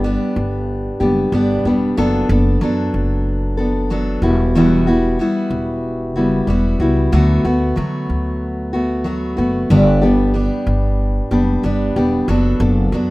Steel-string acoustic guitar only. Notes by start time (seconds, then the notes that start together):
0.04 G3 B3 D4 G4
1.00 G3 B3 D4 G4
1.32 G3 B3 D4 G4
1.65 G3 B3 D4 G4
1.97 F#3 B3 D4 A4
2.29 B3 D4 A4
2.61 F#3 B3 D4 A4
3.57 B3 D4 A4
3.90 F#3 B3 D4 A4
4.23 G3 B3 E4 F#4
4.55 E2 B2 G3 B3 E4 F#4
4.87 G3 B3 E4 F#4
5.19 G3 B3 E4 F#4
6.16 G3 B3 E4 F#4
6.48 G3 B3 E4 F#4
6.80 G3 B3 E4 F#4
7.12 D3 F#3 A3 B3 F#4
7.45 A3 B3 F#4
7.76 F#3 A3 B3 F#4
8.73 A3 B3 F#4
9.04 F#3 A3 B3 F#4
9.37 A3 B3 F#4
9.70 G2 D3 G3 B3 D4 G4
10.02 G3 B3 D4 G4
10.34 G3 B3 D4 G4
11.31 G3 B3 D4 G4
11.63 G3 B3 D4 G4
11.96 G3 B3 D4 G4
12.28 F#3 B3 D4 A4
12.60 B3 D4 A4
12.92 F#3 B3 D4 A4